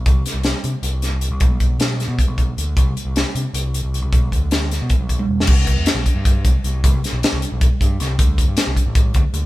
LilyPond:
<<
  \new Staff \with { instrumentName = "Picked electric bass" } { \clef bass \time 7/8 \key c \lydian \tempo 4 = 155 c,8 r16 c,8 r16 c16 r16 c,8. c,8 c,16 | b,,8 b,,8 b,,8. b,16 r16 b,,8. d,8 | c,8 r16 c,8 r16 c16 r16 c,8. c,8 c,16 | b,,8 d,8 d,8. b,16 r16 b,,8. e,,8 |
c,8. e,16 r16 b,,16 r16 g,8. c,16 r16 c,8 | c,8 r16 b,,16 r16 c,16 r16 b,,8 r16 g,8 c,8 | d,8. g,16 r16 c,16 r16 a,,8. d,16 r16 d,8 | }
  \new DrumStaff \with { instrumentName = "Drums" } \drummode { \time 7/8 <hh bd>8 <hh sn>8 <hh sn>8 hh8 hh8 <hh sn>8 hh8 | <hh bd>8 <hh bd>8 <hh sn>8 <hh sn>8 <hh bd>8 <hh bd>8 hh8 | <hh bd>8 hh8 <hh sn>8 hh8 hh8 hh8 hh8 | <hh bd>8 <hh bd>8 <hh sn>8 <hh sn>8 <hh bd>8 <hh bd>16 tommh8 sn16 |
<cymc bd>8 <hh bd>8 <hh sn>8 <hh bd>8 <hh bd>8 <hh bd>8 hh8 | <hh bd>8 <hh sn>8 <hh sn>8 hh8 <hh bd>8 <hh bd>8 <hh sn>8 | <hh bd>8 <hh bd>8 <hh sn>8 <hh bd>8 <hh bd>8 <hh bd>8 hh8 | }
>>